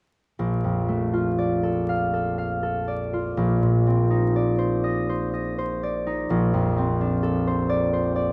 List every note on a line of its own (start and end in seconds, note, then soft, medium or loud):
0.39 3.36 A#1 soft
0.64 3.41 F2 soft
0.88 3.40 A3 soft
1.13 3.12 F4 soft
1.38 2.87 D5 soft
1.63 2.12 A4 soft
1.89 2.37 F5 soft
2.13 2.62 A4 soft
2.38 3.41 F5 soft
2.63 3.40 A4 soft
2.88 4.35 D5 soft
3.13 3.41 F4 soft
3.37 6.29 A#1 soft
3.62 6.34 A#2 soft
3.86 6.76 C4 soft
4.10 6.05 D#4 soft
4.36 5.82 D5 soft
4.58 5.08 C5 soft
4.84 5.32 D#5 soft
5.09 5.57 C5 soft
5.33 6.33 D#5 soft
5.58 7.46 C5 soft
5.83 7.68 D5 soft
6.06 6.34 D#4 soft
6.30 8.32 A#1 medium
6.54 8.32 F2 soft
6.77 8.32 C4 soft
7.01 8.32 D4 soft
7.23 8.32 A4 soft
7.47 7.92 C5 soft
7.69 8.15 D5 medium
7.93 8.32 C5 soft
8.16 8.32 D5 soft